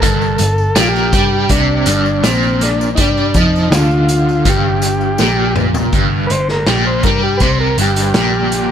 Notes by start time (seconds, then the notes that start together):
0.00 G1 G2 A4, kick, closed hi-hat
0.22 tambourine
0.38 G1 G2, closed hi-hat, tambourine
0.58 tambourine
0.76 A#1 A#2 G4, snare, closed hi-hat, tambourine
0.81 F4
0.88 G4
0.96 tambourine
1.13 G2 G3, kick, closed hi-hat, tambourine
1.49 C2 C3 D4, kick, closed hi-hat
1.86 G1 G2, closed hi-hat, tambourine
2.06 tambourine
2.24 A#1 A#2 C4, snare, closed hi-hat, tambourine
2.43 tambourine
2.61 D4, snare, closed hi-hat, tambourine
2.81 tambourine
2.95 G2 G3 D#4, kick, closed hi-hat
3.00 D4, tambourine
3.17 tambourine
3.34 F2 F3 D#4, kick, closed hi-hat, tambourine
3.56 tambourine
3.70 D2 D3, snare, closed hi-hat, tambourine
3.75 F4
3.91 tambourine
4.09 closed hi-hat, tambourine
4.29 tambourine
4.45 G1 G2 G4, kick, closed hi-hat, tambourine
4.82 closed hi-hat, tambourine
5.01 tambourine
5.18 A#1 A#2, snare, tambourine
5.56 mid tom, tambourine
5.74 floor tom, tambourine
5.93 G1 G2 D3, kick, closed hi-hat
6.27 G1 B4, closed hi-hat
6.31 G2 C5
6.48 A#4, snare
6.56 G3
6.67 A#1 A#2 G4, snare, closed hi-hat
6.87 C5
7.03 G2 G3 A#4, kick, closed hi-hat
7.18 G3
7.23 G4
7.37 C2 B4 C5, kick, closed hi-hat
7.42 C3
7.60 A#4
7.78 G1 G2 G4, closed hi-hat
7.96 closed hi-hat
8.14 A#1 A#2 G4, snare, closed hi-hat
8.39 D3
8.52 closed hi-hat